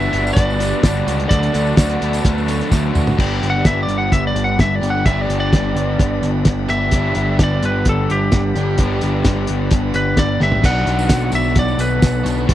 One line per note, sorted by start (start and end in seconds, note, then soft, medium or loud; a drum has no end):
0.00 0.36 D3 medium
0.00 0.13 G3 medium
0.00 0.58 G3 medium
0.00 0.13 B3 medium
0.00 0.35 B3 medium
0.00 0.12 D4 medium
0.00 3.14 D4 medium
0.00 1.06 F#4 medium
0.00 3.14 B4 medium
0.00 0.32 E5 loud
0.00 3.15 F#5 medium
0.00 tambourine soft
0.12 0.31 G1 medium
0.12 0.60 G3 medium
0.12 0.60 B3 medium
0.12 2.00 D4 medium
0.12 closed hi-hat medium
0.12 tambourine soft
0.27 tambourine medium
0.33 0.72 G1 medium
0.33 0.83 B3 medium
0.33 1.25 D5 medium
0.33 kick loud
0.33 closed hi-hat medium
0.50 tambourine soft
0.59 1.30 G3 medium
0.59 0.84 B3 medium
0.59 0.84 D4 medium
0.59 closed hi-hat medium
0.59 tambourine medium
0.74 tambourine soft
0.83 1.02 G1 medium
0.83 1.29 G2 loud
0.83 1.28 D3 loud
0.83 1.29 G3 loud
0.83 1.53 B3 medium
0.83 1.31 D4 loud
0.83 kick loud
0.83 snare loud
0.83 closed hi-hat medium
0.83 tambourine loud
1.07 1.25 C#2 medium
1.07 1.77 F#4 medium
1.07 closed hi-hat medium
1.07 tambourine medium
1.20 closed hi-hat soft
1.29 1.49 D2 medium
1.29 2.48 D3 medium
1.29 1.54 F#3 loud
1.29 1.53 A3 loud
1.29 1.52 D4 loud
1.29 3.17 A4 medium
1.29 2.20 D5 medium
1.29 kick loud
1.29 closed hi-hat loud
1.29 tambourine soft
1.43 closed hi-hat soft
1.43 tambourine soft
1.53 1.72 D2 medium
1.53 1.75 F#3 medium
1.53 2.23 A3 medium
1.53 1.77 D4 medium
1.53 closed hi-hat medium
1.53 tambourine medium
1.67 tambourine soft
1.76 1.96 D2 medium
1.76 2.24 D3 medium
1.76 2.01 F#3 medium
1.76 2.00 A3 medium
1.76 1.99 D4 medium
1.76 2.92 F#4 medium
1.76 kick loud
1.76 snare loud
1.76 closed hi-hat loud
1.76 tambourine loud
1.89 closed hi-hat soft
1.89 tambourine soft
2.01 2.19 D2 medium
2.01 2.48 F#3 medium
2.01 2.47 A3 medium
2.01 3.17 B3 medium
2.01 2.45 D4 medium
2.01 closed hi-hat medium
2.01 tambourine soft
2.13 closed hi-hat soft
2.13 tambourine medium
2.24 2.61 D2 medium
2.24 2.71 A3 medium
2.24 kick loud
2.24 closed hi-hat loud
2.24 tambourine soft
2.38 tambourine soft
2.46 3.18 F#3 medium
2.46 2.70 A3 medium
2.46 2.71 D4 medium
2.46 closed hi-hat medium
2.46 tambourine medium
2.61 closed hi-hat soft
2.61 tambourine soft
2.69 2.90 D2 loud
2.69 3.16 D3 loud
2.69 3.17 F#3 loud
2.69 3.18 A3 medium
2.69 3.17 D4 loud
2.69 kick loud
2.69 snare medium
2.69 tambourine medium
2.94 3.13 D2 medium
2.94 3.18 F#4 medium
2.94 mid tom medium
2.94 tambourine medium
3.07 floor tom medium
3.07 tambourine soft
3.17 3.39 G1 medium
3.17 4.85 G2 medium
3.17 4.80 D3 medium
3.17 4.83 G3 medium
3.17 4.83 B3 medium
3.17 4.82 D4 medium
3.17 10.61 G4 medium
3.17 4.81 G4 loud
3.17 12.54 D5 medium
3.17 12.47 F#5 medium
3.17 12.54 B5 medium
3.17 kick loud
3.17 crash loud
3.42 3.63 G1 medium
3.42 closed hi-hat medium
3.50 3.65 F#5 medium
3.65 3.86 G1 medium
3.65 3.81 E5 medium
3.65 kick loud
3.65 snare loud
3.65 closed hi-hat loud
3.83 3.97 D5 medium
3.88 4.09 G1 medium
3.88 closed hi-hat medium
3.98 4.12 F#5 medium
4.12 4.33 G1 medium
4.12 4.27 E5 medium
4.12 kick loud
4.12 closed hi-hat medium
4.27 4.42 D5 medium
4.34 4.56 G1 medium
4.34 closed hi-hat medium
4.44 4.59 F#5 medium
4.59 4.80 G1 medium
4.59 4.75 E5 medium
4.59 kick loud
4.59 snare loud
4.59 closed hi-hat medium
4.75 4.90 D5 medium
4.82 5.03 G1 medium
4.82 5.05 G2 medium
4.82 5.04 D3 medium
4.82 5.07 G3 medium
4.82 5.07 B3 medium
4.82 5.07 D4 medium
4.82 5.08 G4 medium
4.82 closed hi-hat medium
4.90 5.05 F#5 medium
5.06 5.27 G1 medium
5.06 6.71 G2 medium
5.06 6.68 D3 medium
5.06 6.70 G3 medium
5.06 6.70 B3 medium
5.06 6.69 D4 medium
5.06 6.68 G4 medium
5.06 5.21 E5 medium
5.06 kick loud
5.06 closed hi-hat medium
5.21 5.36 D5 medium
5.29 5.50 G1 medium
5.29 closed hi-hat medium
5.40 6.29 D5 medium
5.53 5.74 G1 medium
5.53 kick loud
5.53 snare loud
5.53 closed hi-hat medium
5.75 5.96 G1 medium
5.75 closed hi-hat medium
5.99 6.20 G1 medium
5.99 kick loud
5.99 closed hi-hat medium
6.22 6.43 G1 medium
6.22 closed hi-hat medium
6.45 6.67 G1 medium
6.45 kick loud
6.45 snare loud
6.45 closed hi-hat medium
6.68 6.90 G1 medium
6.68 6.90 G2 medium
6.68 6.90 D3 medium
6.68 6.92 G3 medium
6.68 6.93 B3 medium
6.68 6.93 D4 medium
6.68 6.93 G4 medium
6.68 7.37 E5 medium
6.68 closed hi-hat medium
6.91 7.13 G1 medium
6.91 8.53 G2 medium
6.91 8.54 D3 medium
6.91 8.54 G3 medium
6.91 8.57 B3 medium
6.91 8.56 D4 medium
6.91 8.54 G4 medium
6.91 kick loud
6.91 closed hi-hat medium
7.15 7.36 G1 medium
7.15 closed hi-hat medium
7.39 7.60 G1 medium
7.39 kick loud
7.39 snare loud
7.39 closed hi-hat loud
7.44 7.64 D5 medium
7.62 7.83 G1 medium
7.62 7.87 B4 medium
7.62 closed hi-hat medium
7.85 8.07 G1 medium
7.85 kick loud
7.85 closed hi-hat medium
7.89 8.10 A4 medium
8.10 8.30 G1 medium
8.10 9.46 G4 medium
8.10 closed hi-hat medium
8.32 8.53 G1 medium
8.32 kick loud
8.32 snare loud
8.32 closed hi-hat medium
8.55 8.76 G1 medium
8.55 8.76 G2 medium
8.55 8.77 D3 medium
8.55 8.77 G3 medium
8.55 8.79 B3 medium
8.55 8.80 D4 medium
8.55 8.77 G4 medium
8.55 closed hi-hat medium
8.77 9.00 G1 medium
8.77 10.39 G2 medium
8.77 10.39 D3 medium
8.77 10.40 G3 medium
8.77 10.41 B3 loud
8.77 10.40 D4 medium
8.77 10.39 G4 medium
8.77 kick loud
8.77 closed hi-hat medium
9.01 9.23 G1 medium
9.01 closed hi-hat medium
9.24 9.46 G1 medium
9.24 kick loud
9.24 snare loud
9.24 closed hi-hat medium
9.47 9.70 G1 medium
9.47 closed hi-hat medium
9.71 9.92 G1 medium
9.71 kick loud
9.71 closed hi-hat medium
9.94 10.15 G1 medium
9.94 10.18 B4 medium
9.94 closed hi-hat medium
10.17 10.39 G1 medium
10.17 10.41 D5 medium
10.17 kick loud
10.17 snare medium
10.17 closed hi-hat medium
10.40 10.63 G1 medium
10.40 10.64 G2 medium
10.40 10.63 D3 medium
10.40 10.63 G3 medium
10.40 10.64 B3 medium
10.40 10.65 D4 medium
10.40 10.63 G4 medium
10.40 10.65 E5 medium
10.40 snare medium
10.52 floor tom medium
10.63 10.85 B1 medium
10.63 12.25 B2 medium
10.63 12.25 F#3 medium
10.63 12.25 B3 medium
10.63 12.23 D4 medium
10.63 12.22 F#4 loud
10.63 12.54 A4 medium
10.63 11.33 F#5 loud
10.63 kick loud
10.63 closed hi-hat medium
10.63 crash medium
10.86 11.08 B1 medium
10.86 closed hi-hat medium
10.86 tambourine soft
10.99 tambourine medium
11.09 11.31 B1 medium
11.09 kick loud
11.09 snare loud
11.09 closed hi-hat loud
11.09 tambourine loud
11.21 tambourine soft
11.32 11.54 B1 medium
11.32 11.57 E5 medium
11.32 closed hi-hat medium
11.32 tambourine medium
11.44 tambourine soft
11.56 11.77 B1 medium
11.56 11.81 D5 medium
11.56 kick loud
11.56 closed hi-hat medium
11.56 tambourine soft
11.68 tambourine soft
11.78 12.00 B1 medium
11.78 12.54 B4 medium
11.78 closed hi-hat medium
11.78 tambourine medium
12.02 12.24 B1 medium
12.02 kick loud
12.02 snare loud
12.02 closed hi-hat medium
12.02 tambourine medium
12.24 12.47 B1 medium
12.24 12.46 B2 medium
12.24 12.48 F#3 medium
12.24 12.49 B3 medium
12.24 12.47 D4 medium
12.24 12.47 F#4 medium
12.24 closed hi-hat medium
12.24 tambourine medium
12.38 tambourine soft
12.47 12.54 B1 medium
12.47 12.54 B2 medium
12.47 12.54 F#3 medium
12.47 12.54 B3 loud
12.47 12.54 D4 medium
12.47 12.54 F#4 medium
12.47 kick loud
12.47 closed hi-hat medium